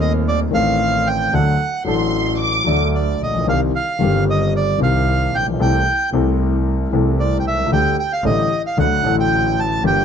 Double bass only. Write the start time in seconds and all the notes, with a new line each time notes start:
Already playing: D#2
0.54 A1
1.33 D2
1.86 A1
2.67 D2
3.20 A#1
3.48 C2
4.01 G1
4.80 C2
5.33 A#1
5.59 C2
6.12 C2
6.90 C2
7.45 C2
7.71 D2
8.24 A1
8.78 D2
9.04 A1
9.84 G1